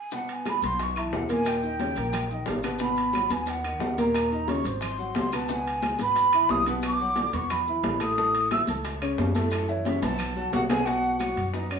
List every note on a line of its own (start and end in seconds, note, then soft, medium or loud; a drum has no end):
0.00 0.16 G#5 medium
0.11 0.39 B2 medium
0.11 0.40 B3 medium
0.11 0.40 B4 medium
0.11 0.34 F#5 medium
0.11 high bongo medium
0.11 high conga soft
0.11 maracas medium
0.28 high conga soft
0.28 high timbale medium
0.28 maracas soft
0.33 0.50 G#5 medium
0.45 0.60 G#3 medium
0.45 0.60 G#4 medium
0.45 0.60 G#5 medium
0.45 0.63 B5 medium
0.45 high bongo medium
0.45 high conga medium
0.45 high timbale medium
0.45 low timbale medium
0.45 claves medium
0.45 maracas soft
0.62 1.09 B1 medium
0.62 0.90 B3 medium
0.62 0.90 B4 medium
0.62 0.91 B5 medium
0.62 0.84 C6 loud
0.62 high conga medium
0.62 high timbale medium
0.62 maracas medium
0.79 1.00 C#6 medium
0.79 high bongo medium
0.79 high conga soft
0.79 high timbale medium
0.79 maracas medium
0.96 1.24 E3 medium
0.96 1.24 E4 medium
0.96 1.24 E5 medium
0.96 1.17 A5 medium
0.96 high conga soft
0.96 high timbale medium
0.96 claves medium
0.96 maracas soft
1.12 1.91 D#2 medium
1.12 1.31 F#5 medium
1.12 high bongo medium
1.12 low bongo medium
1.12 high conga medium
1.12 low timbale medium
1.12 maracas soft
1.29 1.57 A#2 medium
1.29 1.57 A#3 loud
1.29 1.57 A#4 medium
1.29 1.49 G#5 loud
1.29 high conga medium
1.29 high timbale medium
1.29 maracas medium
1.45 2.48 G5 loud
1.45 high bongo medium
1.45 high conga soft
1.45 high timbale medium
1.45 claves medium
1.45 maracas medium
1.62 1.77 D#3 medium
1.62 1.77 D#4 medium
1.62 1.77 D#5 medium
1.62 high bongo soft
1.62 high conga soft
1.62 maracas soft
1.79 1.94 C#3 medium
1.79 1.94 C#4 medium
1.79 1.94 C#5 medium
1.79 high bongo medium
1.79 high conga medium
1.79 high timbale medium
1.79 low timbale medium
1.79 maracas soft
1.96 2.43 A#1 medium
1.96 2.25 A#3 medium
1.96 2.25 A#4 medium
1.96 2.25 A#5 medium
1.96 high bongo soft
1.96 high conga soft
1.96 high timbale medium
1.96 maracas medium
2.13 high bongo medium
2.13 high conga soft
2.13 low conga medium
2.13 high timbale loud
2.13 claves medium
2.13 maracas medium
2.30 2.58 D#3 medium
2.30 2.58 D#4 medium
2.30 2.59 D#5 medium
2.30 high conga soft
2.30 maracas soft
2.46 3.25 G#1 medium
2.46 high bongo medium
2.46 low bongo medium
2.46 high conga medium
2.46 high timbale medium
2.46 low timbale medium
2.46 maracas soft
2.63 2.78 B2 medium
2.63 2.78 B3 medium
2.63 2.78 B4 medium
2.63 high bongo soft
2.63 high conga soft
2.63 high timbale loud
2.63 claves medium
2.63 maracas medium
2.79 3.09 B2 medium
2.79 3.08 B3 medium
2.79 3.09 B4 medium
2.79 3.33 B5 medium
2.79 high bongo medium
2.79 maracas medium
2.96 high conga soft
2.96 high timbale medium
2.96 maracas soft
3.13 3.28 F#3 medium
3.13 3.28 F#4 medium
3.13 3.28 F#5 medium
3.13 high bongo medium
3.13 high conga medium
3.13 high timbale medium
3.13 low timbale medium
3.13 claves medium
3.13 maracas soft
3.30 3.77 D#2 loud
3.30 3.58 B3 medium
3.30 3.58 B4 medium
3.30 3.51 G#5 medium
3.30 3.58 B5 medium
3.30 high conga loud
3.30 high timbale medium
3.30 maracas medium
3.46 4.01 F#5 medium
3.46 high bongo medium
3.46 high conga soft
3.46 high timbale medium
3.46 maracas medium
3.63 3.92 D#3 medium
3.63 3.92 D#4 medium
3.63 3.92 D#5 medium
3.63 high conga soft
3.63 high timbale medium
3.63 claves medium
3.63 maracas soft
3.79 4.59 D#2 medium
3.79 high bongo medium
3.79 low bongo medium
3.79 high conga medium
3.79 low timbale medium
3.79 maracas soft
3.98 4.25 A#2 medium
3.98 4.26 A#3 loud
3.98 4.26 A#4 medium
3.98 4.50 A#5 medium
3.98 high conga medium
3.98 high timbale medium
3.98 maracas medium
4.14 high bongo medium
4.14 high conga soft
4.14 high timbale loud
4.14 claves medium
4.14 maracas medium
4.31 4.45 D#3 medium
4.31 4.45 D#4 medium
4.31 4.46 D#5 medium
4.31 high bongo soft
4.31 high conga soft
4.31 maracas soft
4.48 4.63 C#3 medium
4.48 4.63 C#4 medium
4.48 4.63 C#5 medium
4.48 4.65 C#6 loud
4.48 high bongo medium
4.48 high conga medium
4.48 high timbale medium
4.48 low timbale medium
4.48 maracas soft
4.64 5.11 G#1 medium
4.64 4.93 C4 medium
4.64 4.93 C5 medium
4.64 4.93 C6 medium
4.64 high bongo soft
4.64 high conga soft
4.64 high timbale medium
4.64 maracas medium
4.81 5.35 C6 medium
4.81 high bongo medium
4.81 high conga soft
4.81 low conga medium
4.81 high timbale loud
4.81 claves medium
4.81 maracas medium
4.99 5.26 F#3 medium
4.99 5.26 F#4 medium
4.99 5.26 F#5 medium
4.99 high conga soft
4.99 maracas soft
5.15 5.93 C#2 medium
5.15 high bongo medium
5.15 low bongo medium
5.15 high conga medium
5.15 high timbale medium
5.15 low timbale medium
5.15 maracas soft
5.32 5.46 B2 medium
5.32 5.47 B3 medium
5.32 5.47 B4 medium
5.32 5.53 A5 medium
5.32 high bongo soft
5.32 high timbale medium
5.32 claves medium
5.32 maracas medium
5.48 5.77 B2 medium
5.48 5.77 B3 medium
5.48 5.77 B4 medium
5.48 6.00 G#5 loud
5.48 high bongo medium
5.48 high conga soft
5.48 maracas medium
5.66 high conga soft
5.66 high timbale medium
5.66 maracas soft
5.82 5.97 G#3 medium
5.82 5.97 G#4 medium
5.82 5.97 G#5 medium
5.82 high bongo medium
5.82 high conga medium
5.82 high timbale medium
5.82 low timbale medium
5.82 claves medium
5.82 maracas soft
5.99 6.46 G#1 loud
5.99 6.28 B3 medium
5.99 6.28 B4 medium
5.99 6.52 B5 loud
5.99 6.28 B5 medium
5.99 high conga medium
5.99 high timbale medium
5.99 maracas medium
6.16 high bongo medium
6.16 high conga soft
6.16 high timbale medium
6.16 maracas medium
6.33 6.61 E3 medium
6.33 6.61 E4 medium
6.33 6.61 E5 medium
6.33 high conga soft
6.33 high timbale medium
6.33 claves medium
6.33 maracas soft
6.49 7.28 B1 medium
6.49 6.67 D#6 loud
6.49 high bongo medium
6.49 low bongo medium
6.49 high conga medium
6.49 low timbale medium
6.49 maracas soft
6.66 6.94 B2 medium
6.66 6.94 B3 loud
6.66 6.95 B4 medium
6.66 high conga medium
6.66 high timbale medium
6.66 maracas medium
6.82 7.36 D6 loud
6.82 high bongo medium
6.82 high conga soft
6.82 high timbale loud
6.82 claves medium
6.82 maracas medium
7.00 7.14 F#3 medium
7.00 7.14 F#4 medium
7.00 7.15 F#5 medium
7.00 high bongo soft
7.00 high conga soft
7.00 maracas soft
7.16 7.31 D3 medium
7.16 7.31 D4 medium
7.16 7.31 D5 medium
7.16 high bongo medium
7.16 high conga medium
7.16 high timbale medium
7.16 low timbale medium
7.16 maracas soft
7.33 7.80 E2 medium
7.33 7.61 B3 medium
7.33 7.61 B4 medium
7.33 7.61 B5 medium
7.33 7.53 C#6 loud
7.33 high bongo soft
7.33 high conga soft
7.33 high timbale medium
7.33 maracas medium
7.50 8.01 B5 medium
7.50 high bongo medium
7.50 high conga soft
7.50 low conga medium
7.50 high timbale medium
7.50 claves medium
7.50 maracas medium
7.67 7.95 E3 medium
7.67 7.95 E4 medium
7.67 7.95 E5 medium
7.67 high conga soft
7.67 maracas soft
7.83 8.62 A1 medium
7.83 high bongo medium
7.83 low bongo medium
7.83 high conga medium
7.83 high timbale medium
7.83 low timbale medium
7.83 maracas soft
8.00 8.14 A2 medium
8.00 8.14 A3 loud
8.00 8.14 A4 medium
8.00 8.48 D#6 loud
8.00 high bongo soft
8.00 high conga soft
8.00 high timbale medium
8.00 claves medium
8.00 maracas medium
8.17 8.45 A2 medium
8.17 8.45 A3 medium
8.17 8.46 A4 medium
8.17 high bongo medium
8.17 high conga soft
8.17 maracas medium
8.34 high conga soft
8.34 high timbale medium
8.34 maracas soft
8.51 8.65 E3 medium
8.51 8.65 E4 medium
8.51 8.66 E5 medium
8.51 8.62 E6 loud
8.51 high bongo medium
8.51 high conga medium
8.51 high timbale loud
8.51 low timbale medium
8.51 claves medium
8.51 maracas soft
8.67 9.15 C#2 loud
8.67 8.96 A3 medium
8.67 8.96 A4 medium
8.67 8.97 A5 medium
8.67 high conga loud
8.67 high timbale medium
8.67 maracas medium
8.84 high bongo medium
8.84 high conga soft
8.84 high timbale medium
8.84 maracas medium
9.02 9.29 C#3 medium
9.02 9.30 C#4 medium
9.02 9.29 C#5 medium
9.02 high conga soft
9.02 high timbale medium
9.02 claves medium
9.02 maracas soft
9.18 9.97 F#2 medium
9.18 high bongo medium
9.18 low bongo medium
9.18 high conga medium
9.18 low timbale medium
9.18 maracas soft
9.34 9.62 A2 medium
9.34 9.63 A3 loud
9.34 9.63 A4 loud
9.34 high conga medium
9.34 high timbale medium
9.34 maracas medium
9.51 9.71 A5 medium
9.51 high bongo medium
9.51 high timbale loud
9.51 claves medium
9.51 maracas medium
9.68 9.82 E3 medium
9.68 9.83 E4 medium
9.68 9.88 C#5 medium
9.68 9.82 E5 medium
9.68 high bongo soft
9.68 high conga soft
9.68 maracas soft
9.85 10.00 C#3 medium
9.85 10.00 C#4 medium
9.85 10.00 C#5 medium
9.85 10.02 E5 medium
9.85 high bongo medium
9.85 high conga medium
9.85 high timbale medium
9.85 low timbale medium
9.85 maracas soft
10.02 10.49 B1 medium
10.02 10.30 B3 medium
10.02 10.30 B4 medium
10.02 10.49 A5 loud
10.02 10.30 B5 medium
10.02 high bongo loud
10.02 high timbale medium
10.02 maracas medium
10.19 high conga soft
10.19 low conga medium
10.19 high timbale loud
10.19 claves medium
10.19 maracas loud
10.36 10.64 F#3 medium
10.36 10.64 F#4 medium
10.36 10.64 F#5 medium
10.36 high conga soft
10.36 maracas soft
10.53 11.31 B1 loud
10.53 10.61 F#4 medium
10.53 10.61 F#5 loud
10.53 low bongo medium
10.53 high conga medium
10.53 high timbale medium
10.53 low timbale medium
10.53 maracas soft
10.69 10.83 B2 medium
10.69 10.83 B3 loud
10.69 10.86 G#4 medium
10.69 10.84 B4 medium
10.69 10.87 G#5 loud
10.69 low bongo loud
10.69 high timbale loud
10.69 claves medium
10.69 maracas medium
10.85 11.15 B2 medium
10.85 11.15 B3 medium
10.85 11.18 F#4 medium
10.85 11.19 F#5 loud
10.85 high bongo medium
10.85 high conga soft
10.85 high timbale medium
10.85 maracas medium
11.03 high bongo soft
11.03 high conga soft
11.03 maracas soft
11.19 11.48 F#3 medium
11.19 11.51 F#4 medium
11.19 11.48 F#4 medium
11.19 11.51 F#5 medium
11.19 high bongo medium
11.19 high conga medium
11.19 high timbale medium
11.19 claves medium
11.19 maracas medium
11.37 11.79 F#2 medium
11.37 high bongo soft
11.37 high timbale medium
11.37 maracas soft
11.54 11.68 B3 medium
11.54 11.72 D#4 medium
11.54 11.68 B4 medium
11.54 11.74 D#5 medium
11.54 high bongo medium
11.54 high conga soft
11.54 maracas medium
11.70 11.79 F#3 medium
11.70 11.79 C#4 medium
11.70 11.79 F#4 medium
11.70 11.79 C#5 medium
11.70 high conga soft
11.70 high timbale medium
11.70 claves medium
11.70 maracas soft